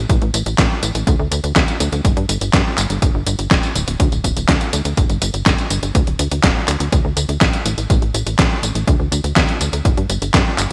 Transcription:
0.09 analog synth bass A1, kick, closed hi-hat, tambourine
0.22 analog synth bass A1, closed hi-hat
0.34 analog synth bass A1, closed hi-hat, tambourine
0.46 analog synth bass A1, closed hi-hat, tambourine
0.58 analog synth bass A1, kick, snare, clap, closed hi-hat, tambourine
0.83 analog synth bass A1, closed hi-hat, tambourine
0.95 analog synth bass A1, closed hi-hat, tambourine
1.07 analog synth bass D2, kick, closed hi-hat, tambourine
1.19 analog synth bass D2
1.31 analog synth bass D2, closed hi-hat, tambourine
1.44 analog synth bass D2, closed hi-hat, tambourine
1.56 analog synth bass D2, kick, snare, clap, closed hi-hat, tambourine
1.68 closed hi-hat, tambourine
1.80 analog synth bass D2, closed hi-hat, tambourine
1.92 analog synth bass D2, closed hi-hat, tambourine
2.05 analog synth bass G1, kick, closed hi-hat, tambourine
2.17 analog synth bass G2, closed hi-hat
2.29 analog synth bass G1, closed hi-hat, tambourine
2.41 analog synth bass G1, closed hi-hat, tambourine
2.53 analog synth bass G2, kick, snare, clap, closed hi-hat, tambourine
2.78 analog synth bass G1, clap, closed hi-hat, tambourine
2.90 analog synth bass G1, closed hi-hat, tambourine
3.02 analog synth bass G1, kick, closed hi-hat, tambourine
3.14 analog synth bass G1
3.27 analog synth bass G1, closed hi-hat, tambourine
3.39 analog synth bass G1, closed hi-hat, tambourine
3.51 analog synth bass D1, kick, snare, clap, closed hi-hat, tambourine
3.63 closed hi-hat, tambourine
3.75 analog synth bass D1, closed hi-hat, tambourine
3.88 analog synth bass D1, closed hi-hat, tambourine
4.00 analog synth bass D2, kick, closed hi-hat, tambourine
4.12 analog synth bass D1, closed hi-hat, tambourine
4.24 analog synth bass D1, kick, closed hi-hat, tambourine
4.36 analog synth bass D1, closed hi-hat, tambourine
4.49 analog synth bass D2, kick, snare, clap, closed hi-hat, tambourine
4.61 closed hi-hat, tambourine
4.73 analog synth bass D2, closed hi-hat, tambourine
4.85 analog synth bass D2, closed hi-hat, tambourine
4.97 analog synth bass G1, kick, closed hi-hat, tambourine
5.09 analog synth bass G1, closed hi-hat, tambourine
5.22 analog synth bass G1, closed hi-hat, tambourine
5.34 analog synth bass G1, closed hi-hat, tambourine
5.46 analog synth bass G1, kick, snare, clap, closed hi-hat, tambourine
5.58 closed hi-hat, tambourine
5.70 analog synth bass G1, closed hi-hat, tambourine
5.83 analog synth bass G1, closed hi-hat, tambourine
5.95 analog synth bass D2, kick, closed hi-hat, tambourine
6.07 analog synth bass D1, closed hi-hat
6.19 analog synth bass D2, closed hi-hat, tambourine
6.32 analog synth bass D2, closed hi-hat, tambourine
6.44 analog synth bass D1, kick, snare, clap, closed hi-hat, tambourine
6.68 analog synth bass D2, clap, closed hi-hat, tambourine
6.80 analog synth bass D2, closed hi-hat, tambourine
6.92 analog synth bass D2, kick, closed hi-hat, tambourine
7.05 analog synth bass D2
7.17 analog synth bass D2, closed hi-hat, tambourine
7.29 analog synth bass D2, closed hi-hat, tambourine
7.41 analog synth bass A1, kick, snare, clap, closed hi-hat, tambourine
7.53 closed hi-hat, tambourine
7.65 analog synth bass A1, closed hi-hat, tambourine
7.78 analog synth bass A1, closed hi-hat, tambourine
7.90 analog synth bass A1, kick, closed hi-hat, tambourine
8.02 analog synth bass A1, closed hi-hat
8.14 analog synth bass A1, closed hi-hat, tambourine
8.26 analog synth bass A1, closed hi-hat, tambourine
8.39 analog synth bass A1, kick, snare, clap, closed hi-hat, tambourine
8.63 analog synth bass A1, closed hi-hat, tambourine
8.75 analog synth bass A1, closed hi-hat, tambourine
8.87 analog synth bass D2, kick, closed hi-hat, tambourine
9.00 analog synth bass D2
9.12 analog synth bass D2, closed hi-hat, tambourine
9.24 analog synth bass D2, closed hi-hat, tambourine
9.36 analog synth bass D2, kick, snare, clap, closed hi-hat, tambourine
9.49 closed hi-hat, tambourine
9.61 analog synth bass D2, closed hi-hat, tambourine
9.73 analog synth bass D2, closed hi-hat, tambourine
9.85 analog synth bass G1, kick, closed hi-hat, tambourine
9.97 analog synth bass G2, closed hi-hat
10.10 analog synth bass G1, closed hi-hat, tambourine
10.22 analog synth bass G1, closed hi-hat, tambourine
10.34 analog synth bass G2, kick, snare, clap, closed hi-hat, tambourine
10.58 analog synth bass G1, clap, closed hi-hat, tambourine

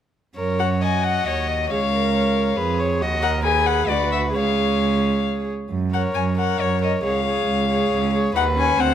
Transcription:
0.36 cello F#2, viola A#4, violin C#5
0.59 viola F#4, violin F#5
0.82 violin D#5 G#5
1.04 violin F#5
1.27 cello D#2, violin C#5
1.48 violin D#5
1.70 cello C#2, viola G#4, violin C#5 F5
1.92 viola A#4
2.15 violin C#5
2.57 cello F2, viola G#4, violin B4
2.80 violin C#5
3.01 cello D#2, viola F#4, violin D#5
3.22 viola A#4, violin F#5
3.44 viola G#4, violin B4 G#5
3.66 violin F#5
3.88 cello D2, viola F#4, violin B4 D5
4.12 violin E5
4.33 cello C#2, viola G#4, violin C#5 F5
5.70 cello F#2
5.92 viola A#4, violin C#5 F#5
6.14 cello F#2, violin G#5
6.37 viola A#4, violin C#5 F#5
6.60 cello F#2, violin C#5
6.81 viola A#4, violin C#5 D#5
7.03 cello C#2, viola G#4, violin C#5 F5
7.25 viola G#4, violin C#5
7.47 cello C#2
7.68 viola G#4, violin C#5
7.91 cello C#2
8.13 viola G#4, violin C#5
8.35 cello D#2, viola D#4, violin B4 F#5
8.56 viola C#4, violin G#5
8.78 cello D2, viola C4, violin C5 F#5

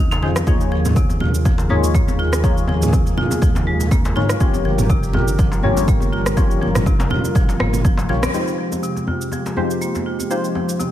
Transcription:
Already playing: detuned saw bass D#2, synth stab F4 C5
0.11 marimba D#4, djembe slap, shaker
0.22 detuned saw bass F2, marimba F3, synth stab C#4 D#4 F4 G#4 C5, muted conga, high conga
0.36 cross-stick, djembe tone, shaker
0.47 detuned saw bass D#2, analog synth pad D#3 A#3 F4 G#4, marimba F3, synth stab A#3 D#4 F4 G#4 C#5, kick, djembe tone, shaker
0.61 shaker
0.72 marimba F3, muted conga, high conga
0.85 mid tom, djembe tone, low conga, shaker
0.96 marimba C3, kick, shaker
1.10 muted conga, djembe tone, shaker
1.20 marimba F4, low conga, djembe bass
1.34 shaker
1.45 marimba F3, kick, muted conga, high conga, djembe tone, shaker
1.58 djembe slap, shaker
1.69 detuned saw bass D#2, marimba G#3, synth stab A#3 D#4 F4 G#4 C#5, mid tom, djembe tone, high conga, djembe bass
1.84 muted conga, shaker
1.95 marimba A#3, kick, mid tom, shaker
2.08 high conga, djembe tone, shaker
2.19 marimba F4, muted conga
2.33 cross-stick, djembe tone, shaker
2.44 marimba F3, synth stab A#3 D#4 F4 G#4 C#5, kick, shaker
2.58 shaker
2.68 marimba F3, muted conga, djembe tone, high conga
2.82 mid tom, low conga, shaker
2.93 marimba C3, kick, djembe tone, shaker
3.07 muted conga, shaker
3.17 marimba F4, high conga, djembe bass, low conga
3.31 djembe tone, shaker
3.42 detuned saw bass D#2, marimba F3, kick, muted conga, low conga, shaker
3.55 djembe slap, djembe tone, high conga, shaker
3.67 marimba G#3
3.80 muted conga, low conga, shaker
3.91 marimba A#3, kick, djembe tone, shaker
4.05 djembe slap, shaker
4.16 detuned saw bass G#2, synth stab A#3 D#4 F4 G#4 C#5, marimba F4, muted conga, high conga, djembe tone
4.29 cross-stick, shaker
4.40 detuned saw bass G1, analog synth pad D3 G3 G4 A#4, marimba F3, synth stab A#3 C#4 F4 G4 C#5, kick, shaker
4.54 djembe tone, shaker
4.65 marimba F3, muted conga, high conga
4.78 mid tom, djembe tone, low conga, shaker
4.90 marimba C3, kick, shaker
5.03 muted conga, shaker
5.13 marimba F4, djembe tone, low conga, djembe bass
5.28 shaker
5.38 marimba F3, kick, muted conga, djembe tone, high conga, shaker
5.52 djembe slap, shaker
5.63 detuned saw bass G1, marimba G3, synth stab A#3 C#4 F4 G4 C#5, mid tom, high conga, djembe bass
5.77 muted conga, djembe tone, shaker
5.88 marimba A#3, kick, mid tom, shaker
6.00 djembe tone, high conga, shaker
6.13 marimba F4, muted conga
6.26 cross-stick, shaker
6.37 marimba F3, synth stab A#3 C#4 F4 G4 C#5, analog synth pad F4, kick, djembe tone, shaker
6.51 shaker
6.62 marimba F3, muted conga, djembe tone, high conga
6.75 cross-stick, mid tom, low conga, shaker
6.86 marimba C3, kick, shaker
7.00 djembe slap, muted conga, djembe tone, shaker
7.10 marimba F4, high conga, low conga, djembe bass
7.25 djembe tone, shaker
7.35 detuned saw bass G1, marimba F3, kick, muted conga, low conga, shaker
7.49 djembe slap, high conga, shaker
7.60 marimba A#3, cross-stick, mid tom, djembe tone
7.73 muted conga, low conga, shaker
7.85 marimba F3, kick, djembe tone, shaker
7.97 djembe slap, shaker
8.09 detuned saw bass A#1, marimba F3, synth stab A#3 C#4 F4 G4 C#5, muted conga, high conga
8.23 marimba C4, cross-stick, djembe tone, shaker
8.34 analog synth pad F3 G#3 C4 G4, marimba F3, synth stab G#3 D#4 F4 G4 C5, djembe tone, shaker
8.48 shaker
8.59 marimba F3
8.72 djembe tone, shaker
8.83 marimba C3, shaker
8.96 djembe tone, shaker
9.07 marimba F4, djembe bass
9.21 shaker
9.32 marimba F3, djembe tone, shaker
9.46 djembe slap, shaker
9.57 marimba G#3, synth stab G#3 D#4 F4 G4 C5, djembe tone, djembe bass
9.71 shaker
9.82 marimba A#3, shaker
9.95 djembe tone, shaker
10.06 marimba F4
10.20 djembe tone, shaker
10.31 marimba F3, synth stab G#3 D#4 F4 G4 C5, shaker
10.44 shaker
10.55 marimba F3, djembe tone
10.69 shaker
10.80 marimba C3, djembe tone, shaker

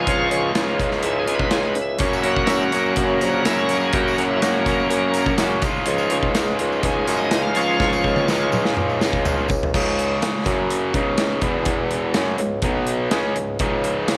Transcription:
Already playing: overdriven electric guitar C#2 G#2 C#3 G#3 C#4 F4, tonewheel organ F3 G#3 C#4
0.07 bassoon C#2, tonewheel organ F4 C#5, kick, closed hi-hat
0.31 bassoon C#2, closed hi-hat
0.54 overdriven electric guitar C#2 G#2 C#3 G#3 F4, bassoon C#2, tonewheel organ F3 G#3 C#4, snare, closed hi-hat
0.80 kick, closed hi-hat
0.91 snare
1.03 bassoon C#2, tonewheel organ E4, closed hi-hat
1.19 tonewheel organ G#4
1.27 overdriven electric guitar C#2 G#2 C#3 G#3 F4, closed hi-hat
1.35 tonewheel organ B4
1.39 kick
1.51 bassoon C#2, tonewheel organ G#4, snare, closed hi-hat
1.67 tonewheel organ B4
1.75 bassoon C#2, closed hi-hat
1.82 tonewheel organ E5
1.99 overdriven electric guitar F#2 C#3 F#3 A#3 C#4 F#4, bassoon F#2, tonewheel organ C#5, kick, closed hi-hat, tambourine
2.13 tonewheel organ E5, tambourine
2.23 bassoon F#2, tonewheel organ F#3 A#3 C#4, closed hi-hat
2.32 tonewheel organ F#5
2.37 kick
2.46 bassoon F#2, tonewheel organ E5, snare, closed hi-hat, tambourine
2.62 tonewheel organ F#5, tambourine
2.72 bassoon F#2, overdriven electric guitar F#2 C#3 F#3 A#3 C#4 F#4, closed hi-hat, tambourine
2.86 tambourine
2.96 bassoon F#2, kick, closed hi-hat, tambourine
3.21 bassoon A#1, closed hi-hat, tambourine
3.29 tonewheel organ F#5
3.45 overdriven electric guitar F#2 C#3 F#3 A#3 C#4 F#4, bassoon F#2, tonewheel organ E5, snare, closed hi-hat, tambourine
3.59 tonewheel organ C#5, tambourine
3.69 closed hi-hat, tambourine
3.77 tonewheel organ G#4
3.83 tambourine
3.92 overdriven electric guitar F#2 C#3 F#3 A#3 C#4 F#4, bassoon F#2, tonewheel organ F#3 A#3 C#4 G4, kick, closed hi-hat, tambourine
4.08 tonewheel organ F#4, tambourine
4.18 bassoon F#2, closed hi-hat
4.27 tonewheel organ E4
4.42 bassoon F#2, tonewheel organ A#3 C#4, snare, closed hi-hat, tambourine
4.65 overdriven electric guitar F#2 C#3 F#3 A#3 C#4 F#4, kick, closed hi-hat, tambourine
4.80 tambourine
4.90 bassoon F#2, closed hi-hat, tambourine
5.14 closed hi-hat, tambourine
5.26 kick
5.37 overdriven electric guitar F#2 C#3 F#3 A#3 C#4 F#4, bassoon F#2, snare, closed hi-hat, tambourine
5.51 tambourine
5.62 overdriven electric guitar C#2 G#2 C#3 G#3 F4, kick, closed hi-hat, tambourine
5.74 tambourine
5.86 bassoon C#2, tonewheel organ F3 G#3 C#4, closed hi-hat, tambourine
5.98 tambourine
6.10 bassoon C#2, closed hi-hat
6.23 kick
6.33 overdriven electric guitar C#2 G#2 C#3 G#3 F4, bassoon C#2, snare, closed hi-hat, tambourine
6.48 tambourine
6.59 bassoon C#2, closed hi-hat
6.72 tambourine
6.81 bassoon C#2, tonewheel organ G4, kick, closed hi-hat, tambourine
6.85 tonewheel organ G#4
7.06 overdriven electric guitar C#2 G#2 C#3 G#3 F4, bassoon F#2, tonewheel organ C#5, closed hi-hat, tambourine
7.17 tonewheel organ D#5
7.31 bassoon C#2, snare, closed hi-hat, tambourine
7.43 tonewheel organ F5
7.55 overdriven electric guitar C#2 G#2 C#3 G#3, tonewheel organ F3 G#3 C#4 F4 C#5, closed hi-hat, tambourine
7.59 overdriven electric guitar F4
7.70 tambourine
7.80 bassoon C#2, kick, snare, tambourine
7.93 tambourine
8.04 bassoon C#2, kick, tambourine
8.16 high tom, tambourine
8.28 overdriven electric guitar C#2 G#2 C#3 G#3 F4, bassoon C#2, snare, tambourine
8.41 tambourine
8.52 mid tom, tambourine
8.65 snare
8.76 bassoon C#2, mid tom, tambourine
8.90 tambourine
9.01 overdriven electric guitar C#2 G#2 C#3 G#3 F4, snare, tambourine
9.13 kick
9.25 bassoon C#2, floor tom, tambourine
9.48 bassoon C#2, kick, tambourine
9.60 floor tom, tambourine
9.74 bassoon C#2, overdriven electric guitar C#2 G#2 C#3, kick, crash
9.99 closed hi-hat
10.22 snare, closed hi-hat
10.45 overdriven electric guitar F#2 C#3 F#3, bassoon F#2, kick, closed hi-hat
10.70 closed hi-hat
10.93 overdriven electric guitar C#2 G#2 C#3, bassoon C#2, kick, closed hi-hat
11.18 snare, closed hi-hat
11.42 overdriven electric guitar E2 B2 E3, bassoon E2, kick, closed hi-hat
11.65 kick, closed hi-hat
11.91 closed hi-hat
12.14 overdriven electric guitar F#2 C#3 F#3, bassoon F#2, snare, closed hi-hat
12.38 bassoon C#2, overdriven electric guitar C#2 G#2, closed hi-hat
12.62 bassoon B1, overdriven electric guitar B2 F#3 B3, kick, closed hi-hat
12.87 closed hi-hat
13.11 bassoon C#2, overdriven electric guitar C#3 G#3 C#4, snare, closed hi-hat
13.36 bassoon C#2, overdriven electric guitar C#2 G#2, closed hi-hat
13.59 bassoon C#2, overdriven electric guitar C#2 G#2 C#3, kick, closed hi-hat
13.84 closed hi-hat
14.08 snare, closed hi-hat

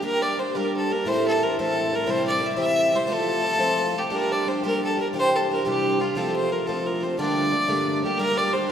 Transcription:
0.02 twelve-string acoustic guitar G3 A#3 D4 G4, fiddle A#4
0.22 fiddle D5
0.37 twelve-string acoustic guitar G3 A#3 D4 G4, fiddle C5
0.55 twelve-string acoustic guitar G3 A#3 D4 G4, fiddle A#4
0.77 fiddle A4
0.90 twelve-string acoustic guitar A#3 D4 G4, fiddle A#4
1.05 twelve-string acoustic guitar A2 E3 A3 C4 E4, fiddle C5
1.28 fiddle A4
1.41 twelve-string acoustic guitar E3 A3 C4 E4, fiddle A#4
1.59 twelve-string acoustic guitar A2 E3 A3 C4 E4, fiddle A4
1.90 twelve-string acoustic guitar A3 C4 E4
1.95 fiddle A#4
2.06 twelve-string acoustic guitar C3 E3 G3 C4 E4
2.10 fiddle C5
2.27 fiddle D5
2.40 twelve-string acoustic guitar E3 G3 C4 E4
2.46 fiddle E5
2.56 twelve-string acoustic guitar C3 E3 G3 C4 E4, fiddle E5
2.92 twelve-string acoustic guitar G3 C4 E4, fiddle C5
3.07 twelve-string acoustic guitar F3 A3 C4 F4
3.12 fiddle A4
3.42 twelve-string acoustic guitar F3 A3 C4 F4
3.58 twelve-string acoustic guitar F3 A3 C4 F4
3.93 twelve-string acoustic guitar A3 C4 F4
3.98 fiddle G4
4.10 twelve-string acoustic guitar G3 A#3 D4 G4
4.15 fiddle A#4
4.32 fiddle D5
4.45 twelve-string acoustic guitar G3 A#3 D4 G4, fiddle C5
4.63 twelve-string acoustic guitar G3 A#3 D4 G4, fiddle A#4
4.84 fiddle A4
4.97 twelve-string acoustic guitar A#3 D4 G4, fiddle A#4
5.13 twelve-string acoustic guitar C3 E3 G3 D4 G4
5.19 fiddle C5
5.36 fiddle A4
5.49 twelve-string acoustic guitar E3 G3 D4 G4, fiddle A#4
5.65 twelve-string acoustic guitar C3 E3 G3 D4 G4, fiddle G4
6.00 twelve-string acoustic guitar G3 D4 G4, fiddle F4
6.15 twelve-string acoustic guitar F3 A3 C4 F4, fiddle A4
6.36 fiddle C5
6.49 twelve-string acoustic guitar F3 A3 C4 F4, fiddle A#4
6.66 twelve-string acoustic guitar F3 A3 C4 F4, fiddle A4
6.86 fiddle A#4
7.00 twelve-string acoustic guitar A3 C4 F4, fiddle C5
7.18 twelve-string acoustic guitar G2 D3 G3 A3 A#3 D4, fiddle D5
7.50 twelve-string acoustic guitar G3 A3 A#3 D4
7.68 twelve-string acoustic guitar G2 D3 G3 A3 A#3 D4
8.03 twelve-string acoustic guitar G3 A3 A#3 D4, fiddle G4
8.18 twelve-string acoustic guitar G3 A#3 D4 G4, fiddle A#4
8.37 fiddle D5
8.53 twelve-string acoustic guitar G3 A#3 D4 G4, fiddle C5

